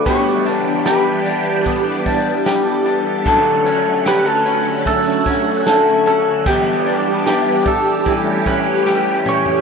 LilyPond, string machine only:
\new Staff \with { instrumentName = "String machine" } { \time 4/4 \key d \major \tempo 4 = 75 << { <e g g'>1 | <d fis fis'>1 | <e g g'>1 | } \\ { <b d'>1 | <a cis'>1 | <b d'>2 <a cis'>2 | } >> }